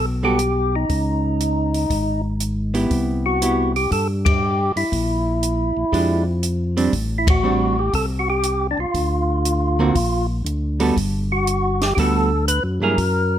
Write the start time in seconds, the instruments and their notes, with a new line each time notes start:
Already playing: tonewheel organ B1
0.23 hollow-body jazz guitar G3 B3 F#4 A4, tonewheel organ G4
0.39 closed hi-hat
0.76 tonewheel organ D#4
0.89 tonewheel organ C#2, kick, open hi-hat
1.40 closed hi-hat
1.74 open hi-hat
1.90 tonewheel organ G#1, kick, open hi-hat
2.40 closed hi-hat
2.74 hollow-body jazz guitar B3 E4 G4, open hi-hat
2.90 tonewheel organ C2, kick, open hi-hat
3.26 tonewheel organ F#4
3.42 hollow-body jazz guitar B3 E4 G4, closed hi-hat
3.76 tonewheel organ G4, open hi-hat
3.91 tonewheel organ G2 A4, kick, open hi-hat
4.25 tonewheel organ G4, kick, ride
4.76 tonewheel organ G2 E4, open hi-hat
4.92 tonewheel organ A#1, kick, open hi-hat
5.43 closed hi-hat
5.77 tonewheel organ A#1
5.92 tonewheel organ F2, hollow-body jazz guitar G#3 D4 G4, kick, open hi-hat
6.43 closed hi-hat
6.77 hollow-body jazz guitar G3 C4 D4, open hi-hat
6.93 tonewheel organ A1, kick, open hi-hat
7.18 tonewheel organ E4
7.27 tonewheel organ F#4, kick, ride
7.43 hollow-body jazz guitar G3 C4 D4
7.79 tonewheel organ G4
7.93 tonewheel organ C2 A4, kick, open hi-hat
8.19 tonewheel organ F#4
8.30 tonewheel organ G4
8.43 closed hi-hat
8.71 tonewheel organ D4
8.78 tonewheel organ C2 F4
8.94 tonewheel organ D2, kick, open hi-hat
9.45 closed hi-hat
9.79 hollow-body jazz guitar D3 A#3 C4 F#4
9.95 tonewheel organ A#1, kick, open hi-hat
10.45 tonewheel organ D2, closed hi-hat
10.80 hollow-body jazz guitar G3 B3 F#4 A4, open hi-hat
10.96 tonewheel organ G1, kick, open hi-hat
11.32 tonewheel organ F#4
11.47 closed hi-hat
11.81 tonewheel organ G4, snare, open hi-hat
11.95 tonewheel organ D2 G4, hollow-body jazz guitar G3 B3 F#4 A4, kick, open hi-hat
12.00 tonewheel organ A4
12.48 tonewheel organ B4, closed hi-hat
12.64 tonewheel organ F#2
12.80 tonewheel organ G2 A#4, hollow-body jazz guitar F#3 A#3 E4 G#4
12.98 tonewheel organ F#2, kick, open hi-hat